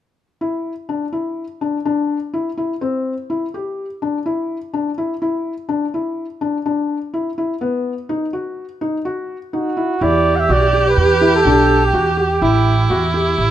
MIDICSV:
0, 0, Header, 1, 5, 480
1, 0, Start_track
1, 0, Key_signature, 1, "minor"
1, 0, Tempo, 480384
1, 413, Time_signature, 5, 2, 24, 8
1, 13496, End_track
2, 0, Start_track
2, 0, Title_t, "Flugelhorn"
2, 0, Program_c, 0, 56
2, 9540, Note_on_c, 0, 66, 68
2, 10026, Note_on_c, 0, 74, 87
2, 10041, Note_off_c, 0, 66, 0
2, 10349, Note_on_c, 0, 78, 59
2, 10364, Note_off_c, 0, 74, 0
2, 10385, Note_on_c, 0, 76, 78
2, 10400, Note_off_c, 0, 78, 0
2, 10505, Note_on_c, 0, 74, 77
2, 10520, Note_off_c, 0, 76, 0
2, 10878, Note_on_c, 0, 71, 67
2, 10893, Note_off_c, 0, 74, 0
2, 10977, Note_off_c, 0, 71, 0
2, 10983, Note_on_c, 0, 71, 65
2, 11341, Note_on_c, 0, 69, 71
2, 11356, Note_off_c, 0, 71, 0
2, 11838, Note_on_c, 0, 67, 67
2, 11853, Note_off_c, 0, 69, 0
2, 12174, Note_off_c, 0, 67, 0
2, 12180, Note_on_c, 0, 67, 70
2, 13095, Note_off_c, 0, 67, 0
2, 13496, End_track
3, 0, Start_track
3, 0, Title_t, "Viola"
3, 0, Program_c, 1, 41
3, 10016, Note_on_c, 1, 67, 89
3, 12407, Note_on_c, 1, 64, 76
3, 12422, Note_off_c, 1, 67, 0
3, 13496, Note_off_c, 1, 64, 0
3, 13496, End_track
4, 0, Start_track
4, 0, Title_t, "Felt piano"
4, 0, Program_c, 2, 0
4, 410, Note_on_c, 2, 64, 54
4, 721, Note_off_c, 2, 64, 0
4, 888, Note_on_c, 2, 62, 45
4, 1044, Note_off_c, 2, 62, 0
4, 1124, Note_on_c, 2, 64, 48
4, 1437, Note_off_c, 2, 64, 0
4, 1611, Note_on_c, 2, 62, 51
4, 1766, Note_off_c, 2, 62, 0
4, 1853, Note_on_c, 2, 62, 54
4, 2162, Note_off_c, 2, 62, 0
4, 2333, Note_on_c, 2, 64, 53
4, 2487, Note_off_c, 2, 64, 0
4, 2573, Note_on_c, 2, 64, 49
4, 2727, Note_off_c, 2, 64, 0
4, 2811, Note_on_c, 2, 60, 62
4, 3120, Note_off_c, 2, 60, 0
4, 3295, Note_on_c, 2, 64, 49
4, 3448, Note_off_c, 2, 64, 0
4, 3539, Note_on_c, 2, 67, 48
4, 3846, Note_off_c, 2, 67, 0
4, 4017, Note_on_c, 2, 62, 52
4, 4170, Note_off_c, 2, 62, 0
4, 4254, Note_on_c, 2, 64, 55
4, 4562, Note_off_c, 2, 64, 0
4, 4731, Note_on_c, 2, 62, 51
4, 4885, Note_off_c, 2, 62, 0
4, 4975, Note_on_c, 2, 64, 49
4, 5127, Note_off_c, 2, 64, 0
4, 5213, Note_on_c, 2, 64, 56
4, 5521, Note_off_c, 2, 64, 0
4, 5682, Note_on_c, 2, 62, 53
4, 5838, Note_off_c, 2, 62, 0
4, 5935, Note_on_c, 2, 64, 45
4, 6243, Note_off_c, 2, 64, 0
4, 6406, Note_on_c, 2, 62, 52
4, 6561, Note_off_c, 2, 62, 0
4, 6651, Note_on_c, 2, 62, 52
4, 6960, Note_off_c, 2, 62, 0
4, 7130, Note_on_c, 2, 64, 54
4, 7284, Note_off_c, 2, 64, 0
4, 7372, Note_on_c, 2, 64, 53
4, 7525, Note_off_c, 2, 64, 0
4, 7605, Note_on_c, 2, 59, 64
4, 7915, Note_off_c, 2, 59, 0
4, 8086, Note_on_c, 2, 63, 55
4, 8241, Note_off_c, 2, 63, 0
4, 8325, Note_on_c, 2, 66, 48
4, 8635, Note_off_c, 2, 66, 0
4, 8805, Note_on_c, 2, 63, 56
4, 8961, Note_off_c, 2, 63, 0
4, 9044, Note_on_c, 2, 66, 54
4, 9355, Note_off_c, 2, 66, 0
4, 9524, Note_on_c, 2, 63, 54
4, 9680, Note_off_c, 2, 63, 0
4, 9761, Note_on_c, 2, 64, 51
4, 9918, Note_off_c, 2, 64, 0
4, 10007, Note_on_c, 2, 64, 72
4, 10317, Note_off_c, 2, 64, 0
4, 10486, Note_on_c, 2, 66, 63
4, 10641, Note_off_c, 2, 66, 0
4, 10723, Note_on_c, 2, 67, 52
4, 11034, Note_off_c, 2, 67, 0
4, 11204, Note_on_c, 2, 64, 61
4, 11360, Note_off_c, 2, 64, 0
4, 11455, Note_on_c, 2, 62, 60
4, 11763, Note_off_c, 2, 62, 0
4, 11927, Note_on_c, 2, 66, 61
4, 12083, Note_off_c, 2, 66, 0
4, 12161, Note_on_c, 2, 67, 51
4, 12319, Note_off_c, 2, 67, 0
4, 12408, Note_on_c, 2, 64, 73
4, 12719, Note_off_c, 2, 64, 0
4, 12889, Note_on_c, 2, 66, 67
4, 13044, Note_off_c, 2, 66, 0
4, 13129, Note_on_c, 2, 67, 57
4, 13439, Note_off_c, 2, 67, 0
4, 13496, End_track
5, 0, Start_track
5, 0, Title_t, "Upright bass"
5, 0, Program_c, 3, 32
5, 10005, Note_on_c, 3, 40, 70
5, 10446, Note_off_c, 3, 40, 0
5, 10479, Note_on_c, 3, 35, 68
5, 10923, Note_off_c, 3, 35, 0
5, 10960, Note_on_c, 3, 40, 71
5, 11404, Note_off_c, 3, 40, 0
5, 11445, Note_on_c, 3, 35, 74
5, 11886, Note_off_c, 3, 35, 0
5, 11926, Note_on_c, 3, 40, 75
5, 12367, Note_off_c, 3, 40, 0
5, 12405, Note_on_c, 3, 33, 74
5, 12847, Note_off_c, 3, 33, 0
5, 12889, Note_on_c, 3, 40, 67
5, 13329, Note_off_c, 3, 40, 0
5, 13371, Note_on_c, 3, 33, 76
5, 13496, Note_off_c, 3, 33, 0
5, 13496, End_track
0, 0, End_of_file